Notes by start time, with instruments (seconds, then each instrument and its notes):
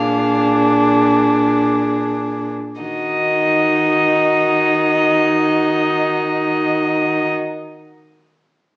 Already playing: cello A#2, viola D4, violin G#4 F5
2.81 cello D#3, viola D#4, violin F#4 D#5